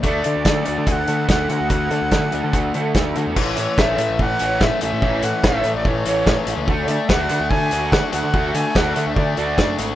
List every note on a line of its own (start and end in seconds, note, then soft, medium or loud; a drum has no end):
0.03 0.21 D2 medium
0.03 0.45 A3 medium
0.03 0.23 D4 loud
0.03 0.24 F#4 loud
0.03 0.90 D5 medium
0.03 kick loud
0.03 closed hi-hat medium
0.24 0.34 D3 medium
0.24 0.43 A3 medium
0.24 0.64 D4 medium
0.24 closed hi-hat medium
0.36 0.44 D2 medium
0.45 0.62 D3 loud
0.45 0.86 A3 medium
0.45 0.64 D4 medium
0.45 kick loud
0.45 snare loud
0.45 closed hi-hat medium
0.65 0.76 D2 medium
0.65 0.84 A3 medium
0.65 1.70 D4 medium
0.65 closed hi-hat medium
0.78 0.86 D3 medium
0.87 1.04 D2 medium
0.87 1.06 A3 medium
0.87 1.06 D4 medium
0.87 0.93 G#5 medium
0.87 kick loud
0.87 closed hi-hat medium
0.92 1.29 F#5 loud
1.07 1.25 D3 medium
1.07 1.27 A3 medium
1.07 1.27 D4 medium
1.07 closed hi-hat medium
1.28 1.46 D2 medium
1.28 1.69 A3 medium
1.28 1.48 D4 medium
1.28 1.49 F#5 medium
1.28 kick loud
1.28 snare loud
1.28 closed hi-hat medium
1.49 1.58 D3 medium
1.49 1.68 A3 medium
1.49 1.68 D4 medium
1.49 2.53 F#4 medium
1.49 2.92 F#5 loud
1.49 closed hi-hat medium
1.61 1.69 D2 medium
1.70 1.87 D2 medium
1.70 2.10 A3 medium
1.70 1.89 D4 medium
1.70 kick loud
1.70 closed hi-hat medium
1.91 2.00 D3 medium
1.91 2.10 A3 medium
1.91 2.32 D4 medium
1.91 closed hi-hat medium
2.02 2.10 D2 medium
2.11 2.29 D3 medium
2.11 2.52 A3 medium
2.11 2.31 D4 medium
2.11 kick loud
2.11 snare loud
2.11 closed hi-hat medium
2.32 2.41 D2 medium
2.32 2.51 A3 medium
2.32 3.36 D4 medium
2.32 closed hi-hat medium
2.44 2.52 D3 medium
2.53 2.71 D2 medium
2.53 2.73 A3 medium
2.53 2.72 D4 medium
2.53 kick loud
2.53 closed hi-hat medium
2.74 2.92 D3 medium
2.74 2.95 A3 medium
2.74 2.93 D4 medium
2.74 closed hi-hat medium
2.95 3.12 D2 medium
2.95 3.36 A3 medium
2.95 3.14 D4 medium
2.95 kick loud
2.95 snare loud
2.95 closed hi-hat medium
3.16 3.25 D3 medium
3.16 3.34 A3 medium
3.16 3.35 D4 medium
3.16 3.37 F#4 medium
3.16 closed hi-hat medium
3.27 3.35 E2 medium
3.36 3.53 A1 medium
3.36 3.56 E3 medium
3.36 3.56 A3 medium
3.36 3.56 C#4 medium
3.36 kick loud
3.36 crash loud
3.57 3.66 A2 medium
3.57 3.76 E3 medium
3.57 3.76 A3 medium
3.57 3.81 C#5 medium
3.57 closed hi-hat medium
3.78 3.95 A1 medium
3.78 3.97 E3 medium
3.78 3.98 A3 medium
3.78 3.98 C#4 medium
3.78 4.23 E5 loud
3.78 kick loud
3.78 snare loud
3.98 4.07 A2 medium
3.98 4.17 E3 medium
3.98 4.18 A3 medium
3.98 closed hi-hat medium
4.09 4.18 A1 medium
4.19 4.36 A2 loud
4.19 4.38 E3 medium
4.19 4.38 A3 medium
4.19 4.64 F#5 loud
4.19 kick loud
4.39 4.57 A1 medium
4.39 4.60 E3 medium
4.39 4.60 A3 medium
4.39 4.60 C#4 medium
4.39 closed hi-hat medium
4.61 4.69 A2 medium
4.61 4.80 E3 medium
4.61 4.80 A3 medium
4.61 4.83 E5 loud
4.61 kick loud
4.61 snare loud
4.81 4.90 A1 medium
4.81 5.00 E3 medium
4.81 5.01 A3 medium
4.81 5.85 C#4 medium
4.81 5.26 E5 loud
4.81 closed hi-hat medium
4.93 5.01 A2 medium
5.02 5.20 A1 loud
5.02 5.22 E3 medium
5.02 5.22 A3 medium
5.02 5.22 C#4 medium
5.02 kick loud
5.23 5.32 A2 medium
5.23 5.42 E3 medium
5.23 5.42 A3 medium
5.23 5.46 F#5 medium
5.23 closed hi-hat medium
5.43 5.61 A1 medium
5.43 5.63 E3 medium
5.43 5.63 A3 medium
5.43 5.64 C#4 loud
5.43 5.76 E5 loud
5.43 kick loud
5.43 snare loud
5.64 5.73 A2 medium
5.64 5.83 E3 medium
5.64 5.83 A3 medium
5.64 closed hi-hat medium
5.74 5.83 A1 medium
5.74 5.89 D5 medium
5.85 6.02 A2 medium
5.85 6.04 E3 medium
5.85 6.04 A3 medium
5.85 6.07 C#5 medium
5.85 kick loud
6.05 6.23 A1 medium
6.05 6.25 E3 medium
6.05 6.26 A3 medium
6.05 6.26 C#4 loud
6.05 6.45 C#5 medium
6.05 closed hi-hat medium
6.27 6.35 A2 medium
6.27 6.45 E3 medium
6.27 6.46 A3 medium
6.27 kick loud
6.27 snare loud
6.47 6.56 A1 medium
6.47 6.66 E3 medium
6.47 6.66 A3 medium
6.47 6.68 C#4 medium
6.47 closed hi-hat medium
6.56 6.66 C#2 medium
6.67 6.85 D2 loud
6.67 6.87 A3 medium
6.67 6.88 D4 medium
6.67 6.88 F#4 medium
6.67 kick loud
6.83 6.89 C#5 medium
6.88 6.97 D3 loud
6.88 7.08 A3 medium
6.88 7.08 D4 medium
6.88 7.10 D5 medium
6.88 6.92 E5 medium
6.88 closed hi-hat medium
7.08 7.27 D2 medium
7.08 7.29 A3 medium
7.08 7.29 D4 loud
7.08 7.30 F#4 medium
7.08 7.51 F#5 loud
7.08 kick loud
7.08 snare loud
7.29 7.39 D3 medium
7.29 7.49 A3 medium
7.29 7.49 D4 medium
7.29 closed hi-hat medium
7.40 7.49 D2 medium
7.50 7.68 D3 medium
7.50 7.70 A3 medium
7.50 7.70 D4 medium
7.50 7.93 G#5 loud
7.50 kick loud
7.71 7.89 D2 medium
7.71 7.91 A3 medium
7.71 7.92 D4 medium
7.71 7.92 F#4 loud
7.71 closed hi-hat medium
7.92 8.01 D3 medium
7.92 8.11 A3 medium
7.92 8.12 D4 medium
7.92 8.13 F#5 loud
7.92 kick loud
7.92 snare loud
8.12 8.22 D2 medium
8.12 8.32 A3 medium
8.12 8.33 D4 medium
8.12 9.17 F#4 medium
8.12 8.56 F#5 loud
8.12 closed hi-hat medium
8.23 8.32 D3 medium
8.34 8.51 D2 medium
8.34 8.54 A3 medium
8.34 8.54 D4 medium
8.34 8.54 F#4 loud
8.34 kick loud
8.54 8.63 D3 medium
8.54 8.74 A3 medium
8.54 8.74 D4 medium
8.54 8.78 G#5 medium
8.54 closed hi-hat medium
8.75 8.93 D2 medium
8.75 8.95 A3 medium
8.75 8.95 D4 medium
8.75 8.95 F#4 loud
8.75 9.08 F#5 medium
8.75 kick loud
8.75 snare loud
8.96 9.05 D3 medium
8.96 9.15 A3 medium
8.96 9.15 D4 medium
8.96 closed hi-hat medium
9.07 9.15 D2 medium
9.07 9.15 E5 medium
9.16 9.34 D3 medium
9.16 9.35 A3 medium
9.16 9.36 D4 medium
9.16 9.36 D5 medium
9.16 kick loud
9.37 9.55 D2 medium
9.37 9.57 A3 medium
9.37 9.57 D4 medium
9.37 9.58 F#4 medium
9.37 9.76 D5 medium
9.37 closed hi-hat medium
9.58 9.77 F#1 medium
9.58 9.77 A3 medium
9.58 9.77 D4 medium
9.58 kick loud
9.58 snare loud
9.78 9.95 G#1 medium
9.78 9.95 A3 medium
9.78 9.95 D4 medium
9.78 9.95 F#4 medium
9.78 closed hi-hat medium